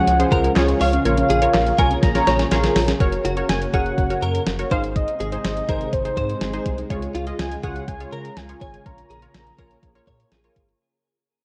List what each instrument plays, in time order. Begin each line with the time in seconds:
Already playing: string machine C#3 F3 G#3, analog polysynth F3 G#4 C#5, soft synth lead F#5
0.08 analog synth bass C#2, synth arpeggio sound G#3, closed hi-hat
0.20 analog polysynth F3 G#4 C5, synth arpeggio sound C#4, closed hi-hat
0.32 analog synth bass C#2, synth arpeggio sound F4, clean electric guitar A#4, kick, closed hi-hat
0.44 synth arpeggio sound G#4, closed hi-hat
0.56 analog synth bass C#2, analog polysynth F4 G#4 C#5, synth arpeggio sound G#5, snare, clap, closed hi-hat
0.68 synth arpeggio sound G#4, closed hi-hat
0.81 analog synth bass C#2, synth arpeggio sound F4, clean electric guitar C#5, soft synth lead F5, open hi-hat
0.93 synth arpeggio sound C#4, closed hi-hat
1.05 analog synth bass A#1, string machine A#3 G#4, synth arpeggio sound A#3, analog polysynth F4 A#4 C#5, soft synth lead F5, closed hi-hat
1.17 synth arpeggio sound C#4, closed hi-hat
1.30 analog synth bass A#1, synth arpeggio sound F4, clean electric guitar G#4, closed hi-hat
1.42 analog polysynth F4 A#4 C#5, synth arpeggio sound G#4, closed hi-hat
1.54 analog synth bass A#1, synth arpeggio sound A#4, snare, clap, closed hi-hat
1.66 synth arpeggio sound G#4, closed hi-hat
1.78 analog synth bass C2, synth arpeggio sound F4, analog polysynth F4 A#4 C#5, clean electric guitar A#4, soft synth lead G#5, kick, closed hi-hat
1.91 synth arpeggio sound C#4, closed hi-hat
2.03 analog synth bass A#1, synth arpeggio sound A#3, soft synth lead A#5, kick, snare, closed hi-hat
2.15 synth arpeggio sound C#4, analog polysynth F4 A#4 C#5, snare, closed hi-hat
2.27 analog synth bass A#1, synth arpeggio sound F4, clean electric guitar C#5, snare, closed hi-hat
2.39 synth arpeggio sound G#4, snare, closed hi-hat
2.51 analog synth bass A#1, analog polysynth F4 A#4 C#5, clean electric guitar G#4, synth arpeggio sound A#4, snare, closed hi-hat
2.64 synth arpeggio sound G#4, snare, closed hi-hat
2.76 analog synth bass A#1, synth arpeggio sound F4, snare, open hi-hat
2.88 synth arpeggio sound C#4, snare, closed hi-hat
3.00 analog synth bass F#1, string machine C#3 A#3 F#4, analog polysynth F#4 A#4 C#5, kick, closed hi-hat
3.12 closed hi-hat
3.25 analog synth bass F#1, clean electric guitar F#4, closed hi-hat
3.37 analog polysynth F#4 A#4 C#5, closed hi-hat
3.49 analog synth bass F#1, soft synth lead G#5, snare, closed hi-hat
3.61 closed hi-hat
3.73 analog synth bass F#1, analog polysynth F#4 A#4 C#5, clean electric guitar G#4, soft synth lead F#5, kick, closed hi-hat
3.86 closed hi-hat
3.98 analog synth bass F#1, kick, closed hi-hat
4.10 analog polysynth F#4 A#4 C#5, closed hi-hat
4.22 analog synth bass F#2, clean electric guitar A#4, closed hi-hat
4.35 closed hi-hat
4.46 analog synth bass F#1, snare, closed hi-hat
4.59 analog polysynth F#4 A#4 C#5, closed hi-hat
4.71 analog synth bass G#1, string machine C3 G#3 D#4, analog polysynth D#4 G#4 C5, clean electric guitar C5, soft synth lead F5, kick, closed hi-hat
4.83 closed hi-hat
4.95 soft synth lead D#5, kick, closed hi-hat
5.07 closed hi-hat
5.20 analog synth bass G#1, clean electric guitar G#4, closed hi-hat
5.32 analog polysynth D#4 G#4 C5, closed hi-hat
5.44 analog synth bass G#1, snare, closed hi-hat
5.57 closed hi-hat
5.68 analog synth bass G#1, analog polysynth D#4 G#4 C5, clean electric guitar A#4, kick, closed hi-hat
5.81 closed hi-hat
5.93 analog synth bass G#1, soft synth lead C5, kick, closed hi-hat
6.05 analog polysynth D#4 G#4 C5, closed hi-hat
6.17 analog synth bass G#2, clean electric guitar C5, kick, closed hi-hat
6.30 closed hi-hat
6.41 analog synth bass G#1, clean electric guitar G#4, snare, closed hi-hat
6.54 analog polysynth D#4 G#4 C5, closed hi-hat
6.66 analog synth bass C2, kick, closed hi-hat
6.78 closed hi-hat
6.90 analog synth bass C#2, string machine C#3 F4, analog polysynth F4 G#4 C#5, kick, closed hi-hat
7.03 closed hi-hat
7.15 analog synth bass C#2, clean electric guitar F4, closed hi-hat
7.27 analog polysynth F4 G#4 D#5, closed hi-hat
7.39 analog synth bass C#2, soft synth lead G#5, snare, closed hi-hat
7.52 closed hi-hat
7.64 analog synth bass C#2, analog polysynth F4 G#4 C#5, clean electric guitar G#4, soft synth lead F#5, kick, closed hi-hat
7.76 closed hi-hat
7.88 analog synth bass C#2, soft synth lead G#5, kick, closed hi-hat
8.00 analog polysynth F4 G#4 C#5, closed hi-hat
8.12 analog synth bass C#3, clean electric guitar A#4, soft synth lead A#5, closed hi-hat
8.25 closed hi-hat
8.37 analog synth bass C#2, soft synth lead G#5, snare, closed hi-hat
8.49 analog polysynth F4 G#4 C#5, closed hi-hat
8.61 analog synth bass G#1, clean electric guitar C#5, soft synth lead G#5, kick, closed hi-hat
8.74 closed hi-hat
8.86 analog synth bass A#1, string machine A#3 G#4, analog polysynth F4 A#4 C#5, soft synth lead A#5, kick, closed hi-hat
8.98 closed hi-hat
9.10 analog synth bass A#1, clean electric guitar G#4, closed hi-hat
9.22 analog polysynth F4 A#4 C#5, closed hi-hat
9.35 analog synth bass A#1, snare, closed hi-hat
9.47 closed hi-hat
9.59 analog synth bass A#1, analog polysynth F4 A#4 C#5, clean electric guitar A#4, kick, closed hi-hat
9.71 closed hi-hat
9.83 analog synth bass A#1, kick, closed hi-hat
9.96 analog polysynth F4 A#4 C#5, closed hi-hat
10.08 analog synth bass A#2, clean electric guitar C#5, kick, closed hi-hat
10.20 closed hi-hat
10.32 analog synth bass A#1, clean electric guitar G#4, snare, closed hi-hat
10.44 analog polysynth F4 A#4 C#5, closed hi-hat
10.56 analog synth bass G#1, kick, closed hi-hat
10.69 closed hi-hat